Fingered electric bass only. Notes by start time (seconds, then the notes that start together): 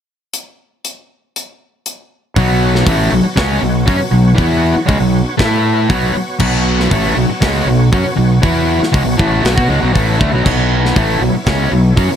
2.36 B1
2.87 A1
3.12 B1
3.25 muted fingered electric bass stroke
3.37 C#2
3.63 B1
3.88 F#2
4.00 muted fingered electric bass stroke
4.13 B1
4.39 E2
4.76 muted fingered electric bass stroke
4.89 C#2
5.00 B1
5.39 A2
5.90 B1
6.15 muted fingered electric bass stroke
6.40 B1
6.92 A1
7.17 B1
7.29 muted fingered electric bass stroke
7.42 C#2
7.66 B1
7.93 F#2
8.04 muted fingered electric bass stroke
8.18 B1
8.43 E2
8.81 muted fingered electric bass stroke
8.94 C#2
9.06 B1
9.19 A1
9.45 B1
9.57 B2
9.69 C#2
9.83 B1
9.96 A1
10.21 D2
10.34 B1
10.46 B1
10.97 A1
11.21 B1
11.34 muted fingered electric bass stroke
11.47 C#2
11.72 B1
11.97 F#2
12.10 muted fingered electric bass stroke